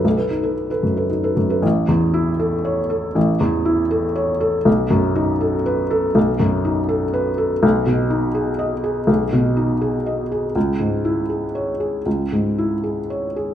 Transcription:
\new Staff \with { instrumentName = "Felt piano" } { \time 3/4 \key a \lydian \tempo 4 = 120 b,,16 <a' b'>16 dis'16 <a' b'>8 <a' b'>16 fis,16 <a' b'>16 dis'16 <a' b'>16 fis,16 <a' b'>16 | a,,8 e,8 e'8 a'8 cis''8 a'8 | a,,8 e,8 e'8 a'8 cis''8 a'8 | b,,8 fis,8 dis'8 a'8 b'8 a'8 |
b,,8 fis,8 dis'8 a'8 b'8 a'8 | b,,8 b,8 dis'8 gis'8 dis''8 gis'8 | b,,8 b,8 dis'8 gis'8 dis''8 gis'8 | cis,8 gis,8 e'8 gis'8 cis''8 gis'8 |
cis,8 gis,8 e'8 gis'8 cis''8 gis'8 | }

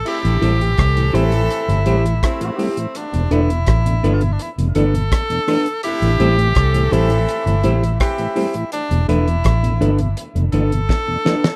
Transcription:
<<
  \new Staff \with { instrumentName = "Clean electric guitar" } { \time 4/4 \key a \minor \tempo 4 = 83 r8 <e' g' c''>16 r8. <e' g' c''>16 r8. <e' g' c''>16 r8. <e' g' c''>16 r16 | r8 <d' a' b'>16 r8. <d' a' b'>16 r8. <d' a' b'>16 r8. <d' a' b'>16 r16 | r8 <e' g' c''>16 r8. <e' g' c''>16 r8. <e' g' c''>16 r8. <e' g' c''>16 r16 | r8 <d' a' b'>16 r8. <d' a' b'>16 r8. <d' a' b'>16 r8. <d' a' b'>16 r16 | }
  \new Staff \with { instrumentName = "Tenor saxophone" } { \time 4/4 \key a \minor g'4. e'4. c'4 | d'8 e'4~ e'32 f'32 e'32 d'32 e'32 r16. a'4. | g'4. e'4. e'4 | d'8 e'4.~ e'32 r16. a'4. | }
  \new Staff \with { instrumentName = "Horn section" } { \time 4/4 \key a \minor <c a e'>8. <e c' g'>16 <e c' a'>4. <e c' g'>16 r16 <c a e'>8. r16 | r1 | <c a e'>8. <e c' g'>16 <e c' a'>4. <c a e'>16 r16 <e c' g'>8. r16 | r1 | }
  \new Staff \with { instrumentName = "Tonewheel organ" } { \clef bass \time 4/4 \key a \minor << { r8 <g a c'>8 r8 <g a c'>8 r8 <g a c'>8 r8 <g a c'>8 | r8 <e a d'>8 r8 <e a d'>8 r8 <e a d'>8 r8 <e a d'>8 | r8 <g a c'>8 r8 <g a c'>8 r8 <g a c'>8 r8 <g a c'>8 | r8 <e a d'>8 r8 <e a d'>8 r8 <e a d'>8 r8 <e a d'>8 | } \\ { r16 <a, e>16 r16 <a, e>16 r16 <a, e>16 r16 <a, e>16 r16 <a, e>16 r16 <a, e>16 r16 <a, e>16 r16 <a, e>16 | r16 <e, b,>16 r16 <e, b,>16 r16 <e, b,>16 r16 <e, b,>16 r16 <e, b,>16 r16 <e, b,>16 r16 <e, b,>16 r8 | r16 <a, e>16 r16 <a, e>16 r16 <a, e>16 r16 <a, e>16 r16 <a, e>16 r16 <a, e>16 r16 <a, e>16 r16 <a, e>16 | r16 <e, b,>16 r16 <e, b,>16 r16 <e, b,>16 r16 <e, b,>16 r16 <e, b,>16 r16 <e, b,>16 r16 <e, b,>16 r8 | } >> }
  \new Staff \with { instrumentName = "Fingered electric bass" } { \clef bass \time 4/4 \key a \minor r16 a,,16 a,,8 c,8 a,,8 r16 g,,16 a,,8 r4 | r16 e,,16 e,,8 a,,8 g,,8 r16 f,,16 g,,8 r4 | r16 a,,16 a,,8 c,8 a,,8 r16 g,,16 a,,8 r4 | r16 e,,16 e,,8 a,,8 g,,8 r16 f,,16 g,,8 r4 | }
  \new DrumStaff \with { instrumentName = "Drums" } \drummode { \time 4/4 cymc16 hh16 hh16 hh16 <hh bd ss>16 hh16 hh16 hh16 hh16 hh16 hh16 hh16 <hh bd ss>16 hh16 hho16 hh16 | hh16 hh16 hh16 hh16 <hh bd ss>16 hh16 hh16 hh16 hh16 hh16 hh16 hh16 <hh bd ss>16 hh16 <hho ss>16 hh16 | hh16 hh16 hh16 hh16 <hh bd ss>16 hh16 hh16 hh16 hh16 hh16 hh16 hh16 <hh bd ss>16 hh16 hho16 hh16 | hh16 hh16 hh16 hh16 <hh bd ss>16 hh16 hh16 hh16 hh16 hh16 hh16 hh16 <bd sn>8 sn16 sn16 | }
>>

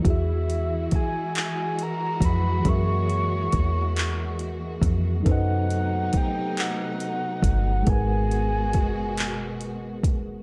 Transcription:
<<
  \new Staff \with { instrumentName = "Soft synth lead" } { \time 6/8 \key gis \minor \tempo 4. = 46 e''4 gis''8 gis''8 ais''8 b''8 | cis'''2~ cis'''8 r8 | fis''4 g''8 fis''4. | gis''2~ gis''8 r8 | }
  \new Staff \with { instrumentName = "Tine electric piano" } { \time 6/8 \key gis \minor <e e' fis' gis' e''>2. | <e fis' gis' ais' e''>2. | <fis dis' a' b' c'' dis''>2. | <gis gis' ais' b' fis''>2. | }
  \new Staff \with { instrumentName = "String section" } { \time 6/8 \key gis \minor << { <e gis fis'>2.~ | <e gis fis'>2. | <c a dis'>2. | <b, gis fis'>2. | } \\ { e'2. | ais2. | b2. | b2. | } >> }
  \new Staff \with { instrumentName = "Fingered electric bass" } { \clef bass \time 6/8 \key gis \minor e,4 r4. eis,8 | fis,4 e,4. eis,8 | fis,4 r4. g,,8 | gis,,4 fis,,4. dis,,8 | }
  \new DrumStaff \with { instrumentName = "Drums" } \drummode { \time 6/8 <hh bd>8 hh8 <hh bd>8 <hc hh>8 hh8 <hh bd>8 | <hh bd>8 hh8 <hh bd>8 <hc hh>8 hh8 <hh bd>8 | <hh bd>8 hh8 <hh bd>8 <hc hh>8 hh8 <hh bd>8 | <hh bd>8 hh8 <hh bd>8 <hc hh>8 hh8 <hh bd>8 | }
>>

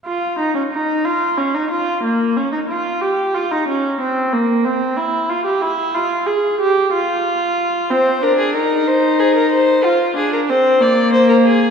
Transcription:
<<
  \new Staff \with { instrumentName = "Violin" } { \time 12/8 \key f \minor \tempo 4. = 61 r1. | r1. | c''8 bes'16 aes'16 bes'8 c''8 aes'16 bes'16 c''8 f'8 aes'16 bes'16 c''8 d''8 c''16 bes'16 aes'8 | }
  \new Staff \with { instrumentName = "Viola" } { \time 12/8 \key f \minor f'8 ees'16 des'16 ees'8 f'8 des'16 ees'16 f'8 bes8 des'16 ees'16 f'8 g'8 f'16 ees'16 des'8 | c'8 bes8 c'8 e'8 f'16 g'16 e'8 f'8 aes'8 g'8 f'4. | c'8 d'8 ees'2 f'8 d'8 c'8 bes4. | }
>>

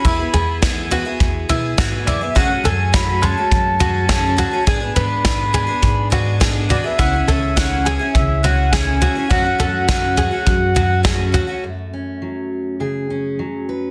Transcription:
<<
  \new Staff \with { instrumentName = "Accordion" } { \time 4/4 \key fis \minor \tempo 4 = 104 b''4 r2 r8 d''16 e''16 | fis''8 gis''8 b''8 a''2~ a''8 | gis''8 b''2 r4 d''16 e''16 | fis''8 e''8 fis''8 gis''8 e''8 fis''8 gis''4 |
fis''2. r4 | r1 | }
  \new Staff \with { instrumentName = "Five-string banjo" } { \time 4/4 \key fis \minor e'8 gis'4 fis'4 e'8 fis'8 e'8 | fis'8 a'4 gis4 fis'8 gis'8 fis'8 | gis'8 b'4 gis'4 fis'8 gis'8 fis'8 | e'8 a'4 gis'4 fis'8 gis'8 fis'8 |
fis'8 a'4 gis'4 fis'8 gis'8 fis'8 | r1 | }
  \new Staff \with { instrumentName = "Twelve-string acoustic guitar" } { \time 4/4 \key fis \minor <e b e' gis'>16 <b e' gis'>16 <e b e' gis'>8 <e b e' gis'>8 <e b e' gis'>16 <b e' gis'>8. <e b e' gis'>8 <e b e' gis'>8 <e b e' gis'>16 <b e' gis'>16 | <fis, cis fis a cis' gis'>16 <fis a cis' gis'>16 <fis a cis' gis'>8 <fis, cis fis a cis' gis'>8 <fis a cis' gis'>16 <fis a cis'>8. <fis a cis' gis'>8 <fis, cis fis a cis' gis'>8 <fis a cis' gis'>16 <fis a cis' gis'>16 | <gis b d' gis'>16 <b d' gis'>16 <gis b d' gis'>8 <gis b d' gis'>8 <gis b d' gis'>16 <b d' gis'>8. <gis b d' gis'>8 <gis b d' gis'>8 <gis b d' gis'>16 <b d' gis'>16 | <cis e cis' e' gis'>16 <cis' e' gis'>16 <e cis' e' gis'>8 <cis e cis' e' gis'>8 <e cis' e' gis'>16 <cis' e' gis'>8. <e cis' e' gis'>8 <cis e cis' e' gis'>8 <e cis' e' gis'>16 <cis' e' gis'>16 |
<fis, cis fis a cis' fis'>16 <fis a cis' fis'>16 <fis a cis' fis'>8 <fis, cis fis a cis' fis'>8 <fis a cis' fis'>16 <fis a cis' fis'>8. <fis a cis' fis'>8 <fis, cis fis a cis' fis'>8 <fis a cis' fis'>16 <fis a cis' fis'>16 | r1 | }
  \new Staff \with { instrumentName = "Steel-string acoustic guitar" } { \time 4/4 \key fis \minor << { r1 | r1 | r1 | r1 |
r1 | a8 cis'4. gis'8 cis'4 b'8 | } \\ { r1 | r1 | r1 | r1 |
r1 | fis,4 fis4 cis4 fis4 | } >> }
  \new Staff \with { instrumentName = "Upright bass" } { \clef bass \time 4/4 \key fis \minor e,8 e,4. e,8 b,8 gis,8 fis,8 | fis,8 fis,4. fis,2 | gis,8 gis,4. gis,2 | cis,8 cis,4. cis,2 |
fis,8 fis,4. fis,2 | r1 | }
  \new DrumStaff \with { instrumentName = "Drums" } \drummode { \time 4/4 <bd tomfh>8 tomfh8 <bd sn tomfh>8 tomfh8 <bd tomfh>8 tomfh8 <bd sn tomfh>8 tomfh8 | <bd tomfh>8 tomfh8 <bd sn tomfh>8 tomfh8 <bd tomfh>8 tomfh8 <bd sn tomfh>8 tomfh8 | <bd tomfh>8 tomfh8 <bd sn tomfh>8 tomfh8 <bd tomfh>8 tomfh8 <bd sn tomfh>8 tomfh8 | <bd tomfh>8 tomfh8 <bd sn tomfh>8 tomfh8 <bd tomfh>8 tomfh8 <bd sn tomfh>8 tomfh8 |
<bd tomfh>8 tomfh8 <bd sn tomfh>8 tomfh8 <bd tomfh>8 tomfh8 <bd sn tomfh>8 tomfh8 | r4 r4 r4 r4 | }
>>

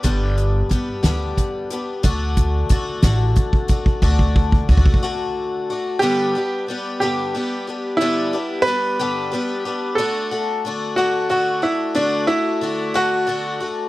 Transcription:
<<
  \new Staff \with { instrumentName = "Upright piano" } { \time 6/8 \key g \major \tempo 4. = 61 r2. | r2. | r2. | g'4 r8 g'4. |
e'4 b'2 | a'4 r8 fis'8 fis'8 e'8 | d'8 e'4 fis'4 r8 | }
  \new Staff \with { instrumentName = "Twelve-string acoustic guitar" } { \time 6/8 \key g \major <g, d g b d' g'>4 <g b d' g'>8 <g, d g b d' g'>4 <g b d' g'>8 | <d a d' fis'>4 <d a d' fis'>8 <d a d' fis'>4 <a d' fis'>8 | <d a d' fis'>4 <d a d' fis'>8 <d a d' fis'>4 <a d' fis'>8 | <g, d g b d' g'>8 <g b d' g'>8 <g b d' g'>8 <g, d g b d' g'>8 <g b d' g'>8 <g b d' g'>8 |
<g, d g b d' g'>8 <g b d' g'>8 <g b d' g'>8 <g, d g b d' g'>8 <g b d' g'>8 <g b d' g'>8 | <d a d' fis'>8 <a d' fis'>8 <d a d' fis'>8 <d a d' fis'>8 <d a d' fis'>8 <a d' fis'>8 | <d a d' fis'>8 <a d' fis'>8 <d a d' fis'>8 <d a d' fis'>8 <d a d' fis'>8 <a d' fis'>8 | }
  \new Staff \with { instrumentName = "Upright bass" } { \clef bass \time 6/8 \key g \major g,,4 g,,16 r16 d,8 r4 | d,4 d,16 r16 a,,8 r4 | d,4 d,16 r4. r16 | r2. |
r2. | r2. | r2. | }
  \new DrumStaff \with { instrumentName = "Drums" } \drummode { \time 6/8 <hh bd>8 hh8 <hh bd>8 <hh sn>8 <hh bd>8 hh8 | <hh bd>8 <hh bd>8 <hh bd>8 <hh bd sn>8 <hh bd>16 bd16 <hh bd>16 bd16 | bd16 bd16 bd16 bd16 bd32 bd32 bd32 bd32 r4. | r4. r4. |
r4. r4. | r4. r4. | r4. r4. | }
>>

